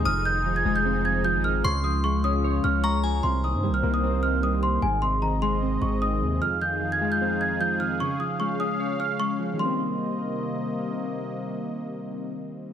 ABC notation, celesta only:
X:1
M:4/4
L:1/16
Q:1/4=151
K:Cphr
V:1 name="Celesta"
f'2 g'3 a'2 g'3 a'2 g'2 f'2 | d'2 e'2 d'2 e'4 f'2 d'2 z2 | c'2 e'3 f'2 e'3 f'2 e'2 c'2 | a2 c'2 b2 c'4 d'2 e'4 |
f'2 g'3 a'2 g'3 a'2 g'2 f'2 | d'2 e'2 d'2 e'4 f'2 d'2 z2 | c'12 z4 | z16 |]